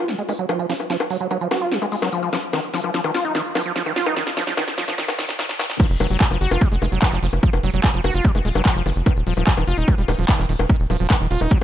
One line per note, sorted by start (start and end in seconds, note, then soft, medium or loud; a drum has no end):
0.08 0.15 F#3 medium
0.08 snare medium
0.08 closed hi-hat loud
0.18 0.23 G#3 medium
0.18 closed hi-hat soft
0.29 0.33 G#3 medium
0.29 open hi-hat loud
0.29 high bongo soft
0.39 0.46 F#3 medium
0.39 closed hi-hat soft
0.49 0.59 F3 medium
0.49 closed hi-hat loud
0.49 high bongo medium
0.59 0.66 F3 medium
0.59 closed hi-hat soft
0.70 0.74 F3 medium
0.70 snare medium
0.70 open hi-hat loud
0.80 closed hi-hat soft
0.80 high bongo soft
0.90 0.97 F3 medium
0.90 snare medium
0.90 closed hi-hat medium
1.00 closed hi-hat soft
1.00 high bongo medium
1.10 1.17 F#3 medium
1.10 open hi-hat loud
1.21 1.28 F#3 medium
1.21 closed hi-hat soft
1.31 1.38 F#3 medium
1.31 closed hi-hat loud
1.31 high bongo soft
1.41 1.48 F3 medium
1.41 closed hi-hat soft
1.51 1.61 F#4 medium
1.51 snare medium
1.51 open hi-hat loud
1.51 high bongo medium
1.61 1.73 F4 medium
1.61 closed hi-hat soft
1.72 1.79 F#3 medium
1.72 snare medium
1.72 closed hi-hat medium
1.82 1.86 G#3 medium
1.82 closed hi-hat soft
1.82 high bongo soft
1.92 1.96 G#3 medium
1.92 open hi-hat loud
2.02 2.09 F#3 medium
2.02 snare medium
2.02 closed hi-hat soft
2.02 high bongo medium
2.12 2.22 F3 medium
2.12 closed hi-hat medium
2.23 2.30 F3 medium
2.23 closed hi-hat soft
2.33 2.37 F3 medium
2.33 snare medium
2.33 open hi-hat loud
2.33 high bongo soft
2.43 closed hi-hat soft
2.53 2.60 D#3 medium
2.53 snare medium
2.53 closed hi-hat medium
2.53 high bongo medium
2.63 closed hi-hat soft
2.74 2.81 F3 medium
2.74 snare medium
2.74 open hi-hat loud
2.84 2.91 F3 medium
2.84 closed hi-hat soft
2.84 high bongo soft
2.94 3.01 F3 medium
2.94 snare medium
2.94 closed hi-hat medium
3.04 3.11 D#3 medium
3.04 closed hi-hat soft
3.04 high bongo medium
3.14 3.24 F4 medium
3.14 snare medium
3.14 open hi-hat loud
3.25 3.33 D#4 medium
3.25 closed hi-hat soft
3.35 3.42 D#3 medium
3.35 snare medium
3.35 closed hi-hat medium
3.35 high bongo soft
3.45 closed hi-hat soft
3.55 3.62 F3 medium
3.55 snare medium
3.55 open hi-hat loud
3.55 high bongo medium
3.65 3.73 F3 medium
3.65 closed hi-hat soft
3.76 3.83 F3 medium
3.76 snare medium
3.76 closed hi-hat medium
3.86 3.93 D#3 medium
3.86 closed hi-hat soft
3.86 high bongo soft
3.96 4.06 F4 medium
3.96 snare medium
3.96 open hi-hat loud
4.06 4.15 D#4 medium
4.06 closed hi-hat soft
4.06 high bongo medium
4.17 4.24 D#3 medium
4.17 snare medium
4.17 closed hi-hat medium
4.27 snare medium
4.27 closed hi-hat soft
4.37 4.44 F3 medium
4.37 snare medium
4.37 open hi-hat loud
4.37 high bongo soft
4.47 4.54 F3 medium
4.47 snare medium
4.57 4.64 D#3 medium
4.57 snare loud
4.57 closed hi-hat medium
4.57 high bongo medium
4.68 snare medium
4.68 closed hi-hat soft
4.78 4.85 F3 medium
4.78 snare loud
4.78 open hi-hat loud
4.88 4.95 F3 medium
4.88 snare medium
4.88 high bongo soft
4.98 5.05 D#3 medium
4.98 snare loud
4.98 closed hi-hat medium
5.08 snare medium
5.08 closed hi-hat soft
5.08 high bongo medium
5.19 5.26 D#3 medium
5.19 snare loud
5.19 open hi-hat loud
5.29 snare medium
5.29 closed hi-hat soft
5.39 5.46 D#3 medium
5.39 snare loud
5.39 closed hi-hat medium
5.39 high bongo soft
5.49 snare loud
5.49 closed hi-hat soft
5.59 5.66 D#3 medium
5.59 snare loud
5.59 open hi-hat loud
5.59 high bongo medium
5.70 snare loud
5.80 5.87 F3 medium
5.80 kick loud
5.80 closed hi-hat loud
5.80 crash loud
5.80 high bongo soft
5.90 5.96 F1 medium
5.90 closed hi-hat soft
6.00 6.07 F1 loud
6.00 6.07 F#3 medium
6.00 open hi-hat loud
6.00 high bongo medium
6.10 6.17 F1 medium
6.10 6.17 F#3 medium
6.10 closed hi-hat soft
6.21 6.28 F#3 medium
6.21 kick loud
6.21 clap loud
6.21 closed hi-hat loud
6.31 6.37 F1 medium
6.31 6.38 F3 medium
6.31 closed hi-hat soft
6.31 high bongo soft
6.41 6.47 F#1 loud
6.41 6.51 F#4 medium
6.41 open hi-hat loud
6.51 6.58 F1 medium
6.51 6.63 F4 medium
6.51 high bongo medium
6.61 6.68 F#3 medium
6.61 kick loud
6.61 closed hi-hat loud
6.72 6.78 F1 medium
6.72 6.76 G#3 medium
6.72 closed hi-hat soft
6.82 6.88 F1 loud
6.82 6.86 G#3 medium
6.82 open hi-hat loud
6.82 high bongo soft
6.92 6.98 F1 medium
6.92 6.99 F#3 medium
6.92 closed hi-hat soft
7.02 7.12 F3 medium
7.02 kick loud
7.02 clap loud
7.02 closed hi-hat loud
7.02 high bongo medium
7.12 7.19 F1 medium
7.12 7.19 F3 medium
7.12 clap soft
7.12 closed hi-hat soft
7.23 7.29 F1 loud
7.23 7.27 F3 medium
7.23 open hi-hat loud
7.33 7.39 F1 medium
7.33 closed hi-hat soft
7.33 high bongo soft
7.43 7.50 F3 medium
7.43 kick loud
7.43 closed hi-hat medium
7.53 7.60 F1 medium
7.53 closed hi-hat soft
7.53 high bongo medium
7.63 7.70 F1 loud
7.63 7.71 F#3 medium
7.63 open hi-hat loud
7.74 7.80 F1 medium
7.74 7.81 F#3 medium
7.74 closed hi-hat soft
7.84 7.91 F#3 medium
7.84 kick loud
7.84 clap loud
7.84 closed hi-hat loud
7.84 high bongo soft
7.94 8.00 F1 medium
7.94 8.01 F3 medium
7.94 closed hi-hat soft
8.04 8.11 F1 loud
8.04 8.14 F#4 medium
8.04 open hi-hat loud
8.04 high bongo medium
8.14 8.21 F1 medium
8.14 8.26 F4 medium
8.14 closed hi-hat soft
8.25 8.32 F#3 medium
8.25 kick loud
8.25 closed hi-hat medium
8.35 8.41 F1 medium
8.35 8.39 G#3 medium
8.35 closed hi-hat soft
8.35 high bongo soft
8.45 8.51 D#1 loud
8.45 8.49 G#3 medium
8.45 open hi-hat loud
8.55 8.62 F1 medium
8.55 8.62 F#3 medium
8.55 high bongo medium
8.65 8.75 F3 medium
8.65 kick loud
8.65 clap loud
8.65 closed hi-hat loud
8.76 8.82 F1 medium
8.76 8.83 F3 medium
8.76 closed hi-hat soft
8.86 8.92 F#1 loud
8.86 8.90 F3 medium
8.86 open hi-hat loud
8.86 high bongo soft
8.96 9.02 F1 medium
8.96 closed hi-hat soft
9.06 9.13 D#3 medium
9.06 kick loud
9.06 closed hi-hat loud
9.06 high bongo medium
9.16 9.23 D#1 medium
9.16 closed hi-hat soft
9.27 9.33 D#1 loud
9.27 9.34 F3 medium
9.27 open hi-hat loud
9.37 9.43 D#1 medium
9.37 9.44 F3 medium
9.37 high bongo soft
9.47 kick loud
9.47 clap loud
9.47 closed hi-hat medium
9.57 9.64 D#1 medium
9.57 9.64 D#3 medium
9.57 closed hi-hat soft
9.57 high bongo medium
9.67 9.74 F1 loud
9.67 9.77 F4 medium
9.67 open hi-hat loud
9.78 9.84 D#1 medium
9.78 9.89 D#4 medium
9.78 closed hi-hat soft
9.88 9.95 F3 medium
9.88 kick loud
9.88 closed hi-hat medium
9.88 high bongo soft
9.98 10.05 D#1 medium
9.98 10.02 G3 medium
9.98 closed hi-hat soft
10.08 10.15 D#1 loud
10.08 10.13 G3 medium
10.08 open hi-hat loud
10.08 high bongo medium
10.19 10.25 D#1 loud
10.19 10.26 F3 medium
10.19 closed hi-hat soft
10.29 10.38 D#3 medium
10.29 kick loud
10.29 clap loud
10.29 closed hi-hat medium
10.39 10.45 D#1 medium
10.39 10.46 D#3 medium
10.39 clap soft
10.39 closed hi-hat soft
10.39 high bongo soft
10.49 10.56 D#1 loud
10.49 10.53 D#3 medium
10.49 open hi-hat loud
10.59 10.66 D#1 loud
10.59 high bongo medium
10.70 10.77 D#3 medium
10.70 kick loud
10.70 closed hi-hat medium
10.80 10.86 D#1 medium
10.80 closed hi-hat soft
10.90 10.96 D#1 loud
10.90 10.97 F3 medium
10.90 open hi-hat loud
10.90 high bongo soft
11.00 11.07 D#1 medium
11.00 11.07 F3 medium
11.00 closed hi-hat soft
11.10 11.17 F3 medium
11.10 kick loud
11.10 clap loud
11.10 closed hi-hat medium
11.10 high bongo medium
11.21 11.27 D#1 medium
11.21 11.28 D#3 medium
11.21 closed hi-hat soft
11.31 11.37 D#1 loud
11.31 11.40 F4 medium
11.31 open hi-hat loud
11.41 11.47 D#1 medium
11.41 11.53 D#4 medium
11.41 closed hi-hat soft
11.41 high bongo soft
11.51 11.58 F3 medium
11.51 kick loud
11.51 closed hi-hat medium